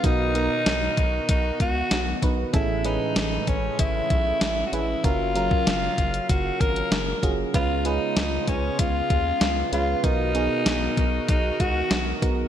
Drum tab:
HH |x-x-x-x-x-x-x-x-|x-x-x-x-x-x-x-x-|x-x-x-xxx-xxx-x-|x-x-x-x-x-x-x-x-|
SD |----o-------o---|----o-------o---|----o-------o---|----o-------o---|
BD |o-----o-o-o---o-|o-----o-o-o-----|o--o--o-o-o---o-|o-----o-o-o-----|

HH |x-x-x-x-x-x-x-x-|
SD |----o-------o---|
BD |o-----o-o-o---o-|